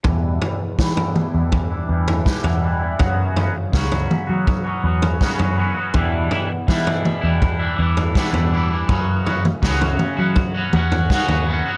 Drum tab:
SD |----o-------o---|----o-------o---|----o-------o---|----o-------o---|
T2 |------o---------|------o---------|------o---------|---o--o---o-----|
FT |o-o--o--o--o-o--|o-o--o--o--o-o--|o-o--o--o--o-o--|o-o--o--o--o-o--|
BD |o---o---o---o---|o---o---o---o---|o---o---o---o---|o---o---o---o---|